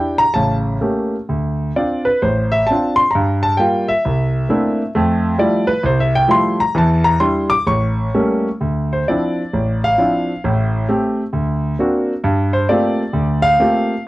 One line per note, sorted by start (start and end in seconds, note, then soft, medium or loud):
0.00 0.22 D4 soft
0.00 0.22 E4 soft
0.00 0.22 G4 soft
0.00 0.19 G5 medium
0.18 0.35 A#5 loud
0.34 0.76 A1 medium
0.34 0.76 C#3 medium
0.34 0.53 A5 medium
0.81 1.15 A3 soft
0.81 1.15 A#3 soft
0.81 1.14 C#4 soft
0.81 1.15 G4 soft
1.29 1.70 D2 medium
1.76 2.09 C4 soft
1.76 2.09 D4 soft
1.76 2.09 F4 medium
1.76 2.06 D5 medium
2.05 2.21 B4 medium
2.22 2.62 A1 medium
2.22 2.52 C5 medium
2.52 2.67 E5 medium
2.67 3.01 C4 medium
2.67 2.97 A5 medium
2.71 3.01 D4 soft
2.71 3.02 F4 medium
2.96 3.12 C6 loud
3.11 3.42 A#5 medium
3.15 3.54 G2 medium
3.43 3.58 A5 medium
3.57 3.91 G3 medium
3.57 3.91 A#3 soft
3.57 3.91 F4 medium
3.57 3.87 G5 medium
3.88 4.90 E5 medium
4.05 4.44 C2 medium
4.49 4.81 A3 medium
4.49 4.81 A#3 soft
4.49 4.81 C4 soft
4.49 4.81 D4 medium
4.49 4.81 E4 medium
4.95 5.34 F2 medium
4.95 5.33 A3 medium
5.38 5.70 F3 medium
5.38 5.70 G3 medium
5.38 5.70 A3 medium
5.38 5.70 E4 medium
5.38 5.68 D5 medium
5.67 5.83 B4 medium
5.83 6.23 C2 medium
5.83 6.00 C5 medium
6.00 6.14 E5 medium
6.15 6.30 G5 loud
6.28 6.60 F3 medium
6.28 6.61 G3 soft
6.28 6.60 A3 medium
6.28 6.60 E4 medium
6.28 6.59 C6 loud
6.60 6.75 A#5 medium
6.75 7.15 E2 medium
6.75 7.14 E3 medium
6.75 7.05 A5 medium
7.04 7.19 A#5 loud
7.20 7.52 G3 medium
7.20 7.52 D4 soft
7.20 7.52 E4 medium
7.20 7.50 C6 medium
7.50 7.65 D6 loud
7.66 8.08 A1 medium
7.66 8.49 C#6 medium
8.14 8.47 G3 medium
8.14 8.47 A3 soft
8.14 8.47 A#3 medium
8.14 8.47 C#4 medium
8.61 9.01 D2 medium
8.93 9.08 C5 medium
9.08 9.41 F3 soft
9.08 9.41 C4 soft
9.08 9.41 D4 soft
9.08 9.41 E4 medium
9.08 9.81 D5 medium
9.53 9.94 A1 medium
9.84 10.41 F5 loud
9.98 10.31 F3 soft
9.98 10.31 C4 soft
9.98 10.31 D4 soft
9.98 10.31 E4 medium
10.44 10.84 A1 medium
10.44 10.85 A2 medium
10.89 11.22 A3 medium
10.89 11.22 C4 soft
10.89 11.21 G4 medium
11.33 11.74 D2 medium
11.79 12.12 A#3 medium
11.79 12.12 C4 soft
11.79 12.12 D4 soft
11.79 12.13 F#4 medium
12.24 12.64 G2 medium
12.53 12.70 C5 medium
12.69 13.02 A3 medium
12.69 13.02 A#3 medium
12.69 13.02 C4 medium
12.69 13.02 F4 medium
12.69 13.02 G4 medium
12.69 13.42 D5 medium
13.13 13.54 D2 medium
13.42 14.01 F5 loud
13.60 13.93 A3 medium
13.60 13.92 A#3 soft
13.60 13.92 C4 soft
13.60 13.93 F4 soft
13.60 13.93 G4 medium